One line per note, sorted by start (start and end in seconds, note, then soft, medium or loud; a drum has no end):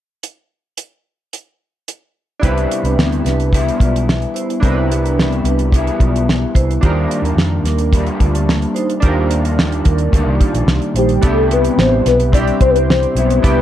0.23 closed hi-hat soft
0.77 closed hi-hat soft
1.33 closed hi-hat soft
1.88 closed hi-hat soft
2.40 2.65 C2 medium
2.40 2.97 C3 medium
2.40 2.98 G3 medium
2.40 2.98 B3 medium
2.40 4.57 D4 medium
2.40 4.58 E4 medium
2.40 4.59 G4 medium
2.40 2.69 C5 medium
2.40 kick medium
2.40 closed hi-hat medium
2.44 2.70 E4 medium
2.44 2.99 E4 medium
2.44 4.60 B4 medium
2.57 closed hi-hat soft
2.71 closed hi-hat medium
2.83 2.95 C2 medium
2.83 2.97 D4 soft
2.83 2.97 B4 medium
2.83 closed hi-hat soft
2.98 3.20 D2 medium
2.98 3.53 C3 soft
2.98 3.52 G3 soft
2.98 3.53 B3 medium
2.98 3.54 E4 soft
2.98 snare medium
3.12 closed hi-hat soft
3.25 3.69 C2 medium
3.25 3.64 D4 soft
3.25 3.64 B4 medium
3.25 snare soft
3.25 closed hi-hat medium
3.40 closed hi-hat soft
3.53 4.61 G3 medium
3.53 4.62 B3 medium
3.53 4.62 E4 medium
3.53 kick medium
3.53 closed hi-hat medium
3.68 closed hi-hat soft
3.79 4.24 B1 medium
3.79 3.93 F4 soft
3.79 3.93 D5 medium
3.79 kick medium
3.79 closed hi-hat medium
3.96 closed hi-hat soft
4.09 snare medium
4.22 closed hi-hat soft
4.34 4.48 E4 soft
4.34 4.48 C5 medium
4.34 closed hi-hat medium
4.50 closed hi-hat soft
4.60 5.41 C2 medium
4.60 4.90 C3 medium
4.60 4.90 G3 medium
4.60 4.90 B3 medium
4.60 6.78 D4 medium
4.60 6.78 E4 medium
4.60 4.88 E4 medium
4.60 4.89 E4 medium
4.60 6.79 G4 medium
4.60 4.89 C5 medium
4.60 kick medium
4.60 closed hi-hat medium
4.65 4.70 A#4 medium
4.72 6.83 B4 medium
4.89 5.17 G3 soft
4.89 5.18 B3 soft
4.89 5.17 E4 soft
4.89 closed hi-hat medium
5.03 5.17 D4 soft
5.03 5.17 B4 medium
5.03 closed hi-hat soft
5.18 5.73 C3 soft
5.18 5.72 G3 soft
5.18 5.72 B3 medium
5.18 5.74 E4 medium
5.18 snare medium
5.32 closed hi-hat soft
5.44 5.89 C2 medium
5.44 5.84 D4 soft
5.44 5.84 B4 medium
5.44 closed hi-hat medium
5.59 closed hi-hat soft
5.72 6.82 G3 medium
5.72 6.83 B3 medium
5.72 6.84 E4 medium
5.72 kick medium
5.72 closed hi-hat medium
5.87 closed hi-hat soft
6.00 6.44 B1 medium
6.00 6.14 F4 medium
6.00 6.14 D5 medium
6.00 kick medium
6.00 closed hi-hat soft
6.16 closed hi-hat medium
6.29 snare medium
6.55 6.77 C2 medium
6.55 6.69 E4 soft
6.55 6.68 C5 medium
6.55 kick medium
6.55 closed hi-hat medium
6.71 closed hi-hat soft
6.81 7.05 D#2 medium
6.81 7.93 D#3 medium
6.81 7.93 G3 medium
6.81 7.94 A#3 medium
6.81 8.98 D4 medium
6.81 7.09 D#4 medium
6.81 8.99 F4 medium
6.81 9.00 G4 medium
6.81 7.09 C5 medium
6.81 kick medium
6.81 closed hi-hat medium
6.85 7.94 D4 medium
6.85 9.01 A#4 medium
7.11 closed hi-hat medium
7.22 7.34 D#2 medium
7.22 7.38 D4 medium
7.22 7.38 A#4 medium
7.22 closed hi-hat soft
7.36 7.59 F2 medium
7.36 snare medium
7.63 8.08 D#2 medium
7.63 8.05 D4 medium
7.63 8.05 A#4 medium
7.63 snare soft
7.63 closed hi-hat medium
7.78 closed hi-hat soft
7.93 9.03 G3 medium
7.93 9.03 A#3 medium
7.93 9.04 D4 medium
7.93 kick medium
7.93 closed hi-hat medium
8.06 closed hi-hat soft
8.20 8.64 D2 medium
8.20 8.34 F4 soft
8.20 8.34 D5 medium
8.20 kick medium
8.20 closed hi-hat soft
8.35 closed hi-hat medium
8.49 snare medium
8.62 closed hi-hat soft
8.74 8.88 D#4 medium
8.74 8.88 C5 medium
8.74 closed hi-hat medium
8.90 closed hi-hat soft
9.00 9.81 D#2 medium
9.00 9.56 D#3 medium
9.00 9.59 G3 medium
9.00 11.18 D4 medium
9.00 9.30 D#4 medium
9.00 11.19 F4 medium
9.00 11.20 G4 medium
9.00 9.29 C5 medium
9.00 kick medium
9.00 closed hi-hat medium
9.05 9.58 A#3 medium
9.05 9.59 D4 medium
9.05 11.21 A#4 medium
9.31 closed hi-hat medium
9.42 9.57 D4 soft
9.42 9.57 A#4 medium
9.42 closed hi-hat soft
9.58 10.11 D#3 medium
9.58 10.13 G3 soft
9.58 10.13 A#3 medium
9.58 10.14 D4 medium
9.58 snare medium
9.72 closed hi-hat soft
9.84 10.07 D#2 medium
9.84 10.24 D4 soft
9.84 10.24 A#4 medium
9.84 kick medium
9.84 closed hi-hat medium
9.98 closed hi-hat soft
10.12 10.24 D2 medium
10.12 11.22 D#3 medium
10.12 11.23 G3 medium
10.12 11.24 A#3 medium
10.12 11.25 D4 medium
10.12 kick medium
10.12 closed hi-hat medium
10.26 10.38 C2 medium
10.41 10.54 F4 medium
10.41 10.54 D5 medium
10.41 kick medium
10.41 closed hi-hat medium
10.54 10.65 A#1 medium
10.54 closed hi-hat soft
10.66 10.78 C2 medium
10.66 snare medium
10.82 closed hi-hat soft
10.94 11.17 A#1 medium
10.94 11.09 D#4 soft
10.94 11.23 G4 medium
10.94 11.09 C5 medium
10.94 closed hi-hat medium
11.09 closed hi-hat soft
11.21 11.67 C2 medium
11.21 12.32 C3 medium
11.21 12.34 G3 medium
11.21 12.12 B3 medium
11.21 12.34 B3 medium
11.21 12.12 D4 medium
11.21 12.13 E4 medium
11.21 12.13 G4 medium
11.21 11.54 A4 medium
11.21 kick medium
11.21 closed hi-hat medium
11.26 12.34 E4 medium
11.51 11.80 B4 medium
11.51 closed hi-hat medium
11.64 closed hi-hat soft
11.77 12.00 A1 medium
11.77 12.09 C5 loud
11.77 snare medium
12.06 12.50 B1 medium
12.06 12.33 B4 loud
12.06 snare soft
12.06 closed hi-hat medium
12.20 closed hi-hat soft
12.32 13.16 C3 medium
12.32 13.18 G3 medium
12.32 13.22 C4 medium
12.32 13.23 D4 medium
12.32 13.23 E4 medium
12.32 13.15 E4 medium
12.32 13.23 G4 medium
12.32 12.46 D5 loud
12.32 kick medium
12.32 closed hi-hat medium
12.47 closed hi-hat soft
12.60 13.05 C2 medium
12.60 12.72 C5 loud
12.60 kick medium
12.60 closed hi-hat medium
12.70 12.79 B4 medium
12.76 13.45 C5 loud
12.76 closed hi-hat medium
12.90 snare medium
13.03 closed hi-hat soft
13.15 13.38 B1 medium
13.15 13.43 G3 soft
13.15 13.44 B3 soft
13.15 13.44 E4 medium
13.15 closed hi-hat medium
13.30 closed hi-hat soft
13.42 13.62 C2 medium
13.42 13.62 C3 medium
13.42 13.62 G3 medium
13.42 13.62 B3 medium
13.42 13.62 D4 medium
13.42 13.62 E4 medium
13.42 13.62 G4 medium
13.42 13.62 B4 loud
13.42 kick loud
13.42 closed hi-hat medium
13.47 13.62 E4 medium